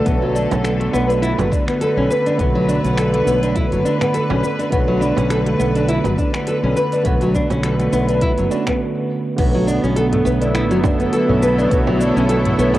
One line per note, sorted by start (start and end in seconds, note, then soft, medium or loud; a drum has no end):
0.00 0.04 D3 medium
0.00 8.80 D3 medium
0.00 0.89 D3 medium
0.00 0.05 A3 medium
0.00 0.06 B3 medium
0.00 0.96 A4 medium
0.00 0.96 B4 medium
0.00 0.07 C#5 medium
0.05 0.45 B1 medium
0.05 0.90 A3 medium
0.05 0.15 B3 loud
0.05 0.90 B3 medium
0.05 0.91 F#4 loud
0.05 0.91 C#5 medium
0.05 kick loud
0.05 closed hi-hat medium
0.05 shaker soft
0.22 0.34 F#3 medium
0.35 0.50 D4 medium
0.35 shaker medium
0.51 0.88 B1 medium
0.51 0.63 C#4 medium
0.51 closed hi-hat soft
0.51 frame drum medium
0.51 shaker soft
0.64 0.73 A4 medium
0.64 finger snap medium
0.64 closed hi-hat medium
0.64 shaker soft
0.80 0.93 A3 medium
0.80 closed hi-hat soft
0.92 1.32 B1 medium
0.92 2.35 D3 medium
0.92 2.36 A3 medium
0.92 1.09 B3 loud
0.92 2.36 B3 medium
0.92 8.83 B4 medium
0.92 2.37 C#5 medium
0.92 shaker medium
0.96 2.37 B4 medium
1.09 1.22 D4 medium
1.09 closed hi-hat soft
1.09 shaker soft
1.22 1.32 E4 medium
1.22 closed hi-hat medium
1.22 shaker soft
1.38 1.49 F#1 medium
1.38 1.46 F#3 medium
1.38 closed hi-hat soft
1.38 frame drum medium
1.38 shaker soft
1.52 1.67 D4 loud
1.52 kick loud
1.52 shaker medium
1.68 1.80 B3 medium
1.68 finger snap medium
1.68 shaker soft
1.81 1.90 A4 medium
1.81 closed hi-hat medium
1.81 shaker soft
1.97 2.07 B1 loud
1.97 2.10 C#4 medium
2.10 2.26 B4 medium
2.10 shaker medium
2.27 2.38 D4 medium
2.27 closed hi-hat soft
2.27 shaker soft
2.37 2.78 B1 loud
2.37 3.22 D3 loud
2.37 3.23 A3 medium
2.37 3.23 B3 medium
2.37 2.49 B3 loud
2.37 3.24 F#4 loud
2.37 3.24 C#5 medium
2.37 kick loud
2.37 closed hi-hat medium
2.37 shaker soft
2.55 2.67 F#3 medium
2.69 2.84 D4 medium
2.69 shaker medium
2.84 3.21 B1 loud
2.84 2.96 C#4 medium
2.84 closed hi-hat soft
2.84 shaker soft
2.97 3.07 A4 medium
2.97 finger snap medium
2.97 closed hi-hat medium
2.97 shaker soft
3.14 3.26 A3 medium
3.14 closed hi-hat soft
3.25 3.65 B1 medium
3.25 4.68 D3 medium
3.25 4.69 A3 medium
3.25 4.69 B3 medium
3.25 3.42 B3 loud
3.25 4.70 B4 medium
3.25 4.70 C#5 medium
3.25 shaker medium
3.43 3.55 D4 medium
3.43 closed hi-hat soft
3.43 shaker soft
3.55 3.65 E4 medium
3.55 kick loud
3.55 closed hi-hat medium
3.55 shaker soft
3.72 3.81 F#1 loud
3.72 3.79 F#3 medium
3.72 closed hi-hat soft
3.72 shaker soft
3.85 4.00 D4 medium
3.85 shaker medium
4.01 4.13 B3 medium
4.01 finger snap medium
4.01 frame drum medium
4.01 shaker soft
4.14 4.23 A4 medium
4.14 closed hi-hat medium
4.14 shaker soft
4.30 4.40 B1 loud
4.30 4.43 C#4 medium
4.30 frame drum medium
4.43 4.58 B4 medium
4.43 shaker medium
4.59 4.71 D4 medium
4.59 closed hi-hat soft
4.59 shaker soft
4.70 5.11 B1 medium
4.70 5.55 D3 loud
4.70 5.56 A3 loud
4.70 4.81 B3 loud
4.70 5.57 B3 medium
4.70 5.57 C#5 medium
4.70 kick loud
4.70 closed hi-hat medium
4.70 shaker soft
4.74 5.58 F#4 loud
4.88 5.00 F#3 medium
5.01 5.16 D4 medium
5.01 shaker medium
5.17 5.54 B1 loud
5.17 5.29 C#4 medium
5.17 closed hi-hat soft
5.17 frame drum medium
5.17 shaker soft
5.30 5.40 A4 medium
5.30 finger snap medium
5.30 closed hi-hat medium
5.30 shaker soft
5.46 5.59 A3 medium
5.46 closed hi-hat soft
5.57 5.98 B1 medium
5.57 7.01 D3 medium
5.57 7.02 A3 medium
5.57 7.02 B3 medium
5.57 5.75 B3 loud
5.57 7.03 B4 medium
5.57 7.02 C#5 medium
5.57 shaker medium
5.75 5.88 D4 medium
5.75 closed hi-hat soft
5.75 shaker soft
5.89 5.98 E4 medium
5.89 closed hi-hat medium
5.89 shaker soft
6.04 6.15 F#1 loud
6.04 6.13 F#3 medium
6.04 closed hi-hat soft
6.04 frame drum medium
6.04 shaker soft
6.18 6.33 D4 medium
6.18 kick loud
6.18 shaker medium
6.34 6.47 B3 medium
6.34 finger snap medium
6.34 shaker soft
6.47 6.57 A4 medium
6.47 closed hi-hat medium
6.47 shaker soft
6.63 6.73 B1 loud
6.63 6.76 C#4 medium
6.77 6.92 B4 medium
6.77 shaker medium
6.92 7.04 D4 medium
6.92 closed hi-hat soft
6.92 shaker soft
7.03 7.44 B1 loud
7.03 7.89 D3 loud
7.03 7.89 A3 medium
7.03 7.90 B3 medium
7.03 7.15 B3 loud
7.03 7.90 C#5 medium
7.03 kick loud
7.03 closed hi-hat medium
7.03 shaker soft
7.07 7.91 F#4 loud
7.21 7.33 F#3 medium
7.21 closed hi-hat soft
7.21 shaker soft
7.35 7.50 D4 loud
7.35 kick medium
7.35 shaker medium
7.50 7.87 B1 medium
7.50 7.63 C#4 medium
7.50 closed hi-hat soft
7.50 frame drum medium
7.50 shaker soft
7.63 7.73 A4 medium
7.63 finger snap medium
7.63 closed hi-hat medium
7.63 shaker soft
7.80 7.92 A3 medium
7.80 closed hi-hat soft
7.80 shaker soft
7.92 8.31 B1 medium
7.92 8.48 D3 medium
7.92 8.48 A3 medium
7.92 8.48 B3 medium
7.92 8.08 B3 loud
7.92 8.49 B4 medium
7.92 8.49 C#5 medium
7.92 shaker medium
8.09 8.21 D4 medium
8.09 closed hi-hat soft
8.09 shaker soft
8.22 8.31 E4 loud
8.22 kick loud
8.22 closed hi-hat medium
8.22 shaker soft
8.38 8.48 F#1 loud
8.38 8.45 F#3 medium
8.38 closed hi-hat soft
8.38 shaker soft
8.50 8.79 D3 medium
8.50 8.80 A3 medium
8.50 8.80 B3 medium
8.50 8.80 C#4 medium
8.50 8.66 D4 medium
8.50 8.80 F#4 medium
8.50 shaker medium
8.67 8.80 B3 medium
8.67 finger snap medium
8.67 kick medium
8.67 closed hi-hat soft
8.67 frame drum medium
8.67 shaker soft
9.36 9.77 B1 loud
9.36 10.22 D3 loud
9.36 12.79 F#3 medium
9.36 10.22 A3 medium
9.36 10.23 B3 medium
9.36 9.48 B3 loud
9.36 10.24 F#4 loud
9.36 10.23 C#5 medium
9.36 kick loud
9.36 closed hi-hat medium
9.36 crash medium
9.36 shaker soft
9.54 9.66 F#3 medium
9.65 12.79 B3 medium
9.65 9.83 D4 loud
9.65 shaker medium
9.83 10.20 B1 loud
9.83 9.95 C#4 medium
9.83 shaker soft
9.96 10.06 A4 medium
9.96 closed hi-hat medium
9.96 shaker soft
10.13 10.25 A3 medium
10.13 closed hi-hat soft
10.13 mid tom medium
10.24 10.70 B1 medium
10.24 10.81 D3 medium
10.24 10.81 A3 medium
10.24 10.41 B3 loud
10.24 10.81 B3 medium
10.24 10.82 B4 medium
10.24 10.82 C#5 medium
10.24 shaker medium
10.41 10.54 D4 medium
10.41 12.79 E4 medium
10.41 closed hi-hat soft
10.41 shaker soft
10.54 10.64 E4 loud
10.54 finger snap medium
10.54 closed hi-hat medium
10.54 shaker soft
10.70 11.08 F#1 medium
10.70 10.78 F#3 medium
10.70 closed hi-hat soft
10.70 shaker soft
10.82 11.25 D3 medium
10.82 11.25 A3 medium
10.82 11.25 B3 medium
10.82 10.99 D4 medium
10.82 11.26 F#4 medium
10.82 11.25 C#5 medium
10.82 kick loud
10.82 frame drum medium
10.82 shaker medium
10.90 12.79 A4 medium
11.00 11.12 B3 medium
11.00 closed hi-hat soft
11.00 shaker soft
11.13 11.22 A4 medium
11.13 closed hi-hat medium
11.13 shaker soft
11.28 11.66 B1 medium
11.28 11.67 D3 medium
11.28 11.68 A3 medium
11.28 11.68 B3 medium
11.28 11.42 C#4 medium
11.28 11.68 F#4 medium
11.28 11.68 C#5 medium
11.28 mid tom medium
11.42 11.57 B4 medium
11.42 shaker medium
11.58 11.70 D4 medium
11.58 12.79 C#5 medium
11.58 shaker soft
11.69 12.10 B1 loud
11.69 12.54 D3 loud
11.69 12.55 A3 medium
11.69 11.80 B3 loud
11.69 12.55 B3 medium
11.69 12.56 F#4 loud
11.69 12.56 C#5 medium
11.69 kick loud
11.69 closed hi-hat medium
11.69 shaker soft
11.87 11.99 F#3 loud
11.87 frame drum medium
12.00 12.16 D4 medium
12.00 shaker medium
12.16 12.53 B1 medium
12.16 12.28 C#4 medium
12.16 shaker soft
12.29 12.39 A4 medium
12.29 closed hi-hat medium
12.29 shaker soft
12.46 12.58 A3 medium
12.46 closed hi-hat soft
12.46 mid tom medium
12.58 12.79 B1 medium
12.58 12.79 D3 medium
12.58 12.79 A3 medium
12.58 12.79 B3 medium
12.58 12.74 B3 loud
12.58 12.79 B4 medium
12.58 12.79 C#5 medium
12.58 shaker medium
12.74 12.79 D4 medium
12.74 closed hi-hat soft
12.74 frame drum medium
12.74 shaker soft